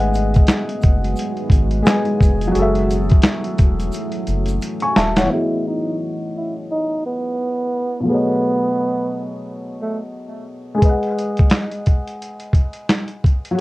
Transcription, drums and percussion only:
0.00 closed hi-hat soft
0.14 closed hi-hat medium
0.14 shaker soft
0.34 kick medium
0.34 closed hi-hat soft
0.34 shaker soft
0.47 finger snap medium
0.47 snare loud
0.47 closed hi-hat medium
0.47 shaker medium
0.69 closed hi-hat medium
0.82 kick medium
0.82 closed hi-hat medium
0.82 shaker soft
1.04 closed hi-hat soft
1.16 closed hi-hat medium
1.16 shaker medium
1.37 closed hi-hat soft
1.50 kick medium
1.50 closed hi-hat medium
1.50 shaker soft
1.71 closed hi-hat soft
1.86 finger snap medium
1.86 snare loud
1.86 closed hi-hat medium
1.86 shaker medium
2.05 closed hi-hat soft
2.21 kick loud
2.21 closed hi-hat medium
2.21 shaker medium
2.41 closed hi-hat medium
2.41 shaker soft
2.55 closed hi-hat medium
2.55 shaker medium
2.75 closed hi-hat soft
2.91 closed hi-hat medium
2.91 shaker medium
3.10 kick loud
3.10 closed hi-hat soft
3.22 finger snap medium
3.22 snare loud
3.22 closed hi-hat medium
3.22 shaker medium
3.44 closed hi-hat medium
3.58 kick medium
3.58 closed hi-hat medium
3.58 shaker soft
3.80 closed hi-hat soft
3.80 shaker soft
3.92 closed hi-hat medium
3.92 shaker medium
4.12 closed hi-hat soft
4.27 closed hi-hat medium
4.27 shaker medium
4.46 closed hi-hat soft
4.46 shaker medium
4.62 closed hi-hat medium
4.62 shaker medium
4.80 closed hi-hat soft
4.96 snare medium
4.96 closed hi-hat medium
4.96 shaker soft
5.16 snare medium
5.16 closed hi-hat medium
5.16 shaker medium
10.82 kick medium
10.82 closed hi-hat medium
11.03 closed hi-hat soft
11.19 closed hi-hat medium
11.37 kick medium
11.37 closed hi-hat soft
11.50 finger snap medium
11.50 snare loud
11.50 closed hi-hat medium
11.71 closed hi-hat soft
11.86 kick medium
11.86 closed hi-hat medium
12.07 closed hi-hat soft
12.22 closed hi-hat medium
12.40 closed hi-hat soft
12.53 kick medium
12.53 closed hi-hat medium
12.73 closed hi-hat soft
12.90 finger snap medium
12.90 snare loud
12.90 closed hi-hat medium
13.08 closed hi-hat soft
13.24 kick medium
13.24 closed hi-hat medium
13.45 closed hi-hat medium

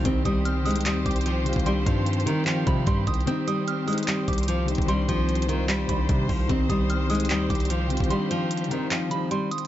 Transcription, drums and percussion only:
0.05 kick loud
0.05 closed hi-hat medium
0.25 kick medium
0.25 closed hi-hat medium
0.45 closed hi-hat medium
0.66 closed hi-hat soft
0.66 open hi-hat medium
0.71 closed hi-hat medium
0.76 closed hi-hat medium
0.81 closed hi-hat medium
0.86 clap loud
0.86 closed hi-hat medium
1.06 kick medium
1.06 closed hi-hat medium
1.11 closed hi-hat medium
1.16 closed hi-hat medium
1.21 closed hi-hat medium
1.26 closed hi-hat medium
1.46 closed hi-hat medium
1.46 open hi-hat medium
1.53 kick loud
1.53 closed hi-hat medium
1.60 closed hi-hat soft
1.66 closed hi-hat medium
1.86 kick medium
1.86 closed hi-hat medium
2.06 closed hi-hat medium
2.13 closed hi-hat medium
2.20 closed hi-hat soft
2.27 closed hi-hat medium
2.47 clap loud
2.47 closed hi-hat medium
2.67 kick medium
2.67 closed hi-hat medium
2.87 kick loud
2.87 closed hi-hat medium
3.07 kick loud
3.07 closed hi-hat medium
3.14 closed hi-hat medium
3.21 closed hi-hat soft
3.27 closed hi-hat medium
3.48 closed hi-hat medium
3.68 closed hi-hat medium
3.88 closed hi-hat soft
3.88 open hi-hat medium
3.93 closed hi-hat medium
3.98 closed hi-hat medium
4.03 closed hi-hat medium
4.08 clap loud
4.08 closed hi-hat medium
4.28 kick medium
4.28 closed hi-hat medium
4.33 closed hi-hat medium
4.38 closed hi-hat medium
4.43 closed hi-hat medium
4.48 closed hi-hat medium
4.68 closed hi-hat medium
4.68 open hi-hat medium
4.75 kick loud
4.75 closed hi-hat medium
4.82 closed hi-hat soft
4.88 closed hi-hat medium
5.09 kick medium
5.09 closed hi-hat medium
5.29 closed hi-hat soft
5.35 closed hi-hat medium
5.42 closed hi-hat medium
5.49 closed hi-hat medium
5.69 clap loud
5.69 closed hi-hat medium
5.89 kick medium
5.89 closed hi-hat medium
6.09 kick loud
6.09 closed hi-hat medium
6.29 kick loud
6.29 open hi-hat medium
6.49 kick loud
6.49 closed hi-hat medium
6.70 kick medium
6.70 closed hi-hat medium
6.90 closed hi-hat medium
7.10 closed hi-hat soft
7.10 open hi-hat medium
7.15 closed hi-hat medium
7.20 closed hi-hat medium
7.25 closed hi-hat medium
7.30 clap loud
7.30 closed hi-hat medium
7.50 kick medium
7.50 closed hi-hat medium
7.55 closed hi-hat medium
7.60 closed hi-hat medium
7.65 closed hi-hat medium
7.70 closed hi-hat medium
7.90 closed hi-hat medium
7.90 open hi-hat medium
7.97 kick loud
7.97 closed hi-hat medium
8.04 closed hi-hat soft
8.11 closed hi-hat medium
8.31 closed hi-hat medium
8.51 closed hi-hat medium
8.57 closed hi-hat medium
8.64 closed hi-hat soft
8.71 closed hi-hat medium
8.91 clap loud
8.91 closed hi-hat medium
9.11 closed hi-hat medium
9.31 closed hi-hat medium
9.51 closed hi-hat medium
9.58 closed hi-hat medium

